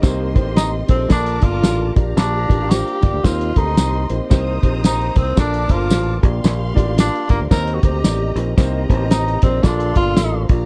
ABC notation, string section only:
X:1
M:4/4
L:1/8
Q:"Swing" 1/4=112
K:Gm
V:1 name="String section"
[Gec']4 [Bad']3 [Gfb]- | [Gfb]4 [Gec']4 | [cbe']4 [Bad']3 [Gfc']- | [Gfc']4 [Geb]4 |
[Geb]4 [Afc']3 [Gfb] |]